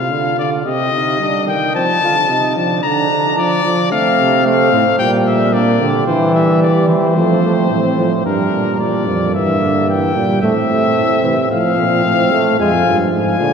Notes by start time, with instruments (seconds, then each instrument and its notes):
Already playing: trombone C3, trumpet F5
0.11 trombone D3, flugelhorn F4
0.38 trombone D3, trumpet D5
0.65 trombone C3, flugelhorn G4, trumpet D#5
0.92 trombone C3, flugelhorn D#4
1.19 trombone G3, flugelhorn D4
1.47 trombone D#3, trumpet G5
1.74 trombone F3, flugelhorn C4, trumpet A5
2.01 trombone D3, flugelhorn F4
2.29 trombone C3, flugelhorn D#4
2.56 trombone F3, flugelhorn D4, trumpet A5
2.83 trombone D3, trumpet A#5
3.11 trombone D3
3.37 trombone F3, trumpet D5
3.65 trombone F3
3.91 trombone A3, flugelhorn C4, trumpet F5
4.19 bass trombone C3
4.45 trombone A3, trumpet F5
4.72 bass trombone A2, trombone C4
4.99 bass trombone A#2, trombone G3, flugelhorn A#3, trumpet G5
5.27 trumpet E5
5.53 trombone A#3, flugelhorn D4, trumpet D5
5.80 bass trombone D3, flugelhorn G4
6.07 bass trombone E3, trombone G3, trumpet C5
6.35 trumpet E5
6.62 flugelhorn G4, trumpet D5
6.88 bass trombone E3, trumpet C5
7.16 bass trombone F3, trombone A3, flugelhorn C4
7.43 trombone A3
7.70 bass trombone A2, trombone C4
7.98 trombone F3
8.25 bass trombone G2, trombone G3, flugelhorn D4, trumpet A#4
8.53 bass trombone A#2
8.79 trombone G3, flugelhorn D4, trumpet D5
9.07 bass trombone F2, flugelhorn A#3
9.34 bass trombone G2, trombone E3, trumpet E5
9.61 trombone D3
9.88 trombone E3, trumpet G5
10.15 bass trombone A#2, trombone G3
10.42 bass trombone A2, trombone A3, flugelhorn C4, trumpet E5
10.69 trombone A3
10.96 bass trombone A2
11.23 bass trombone C3, trombone E3
11.50 bass trombone A2, trombone F3, flugelhorn C4, trumpet F5
11.77 bass trombone A#2
12.05 bass trombone A2
12.32 trombone A3
12.59 bass trombone F2, trombone G#3, flugelhorn F4, trumpet G#5
12.86 bass trombone G2, trombone F3
13.12 bass trombone G#2, flugelhorn F4, trumpet G#5
13.40 bass trombone A#2, trombone D3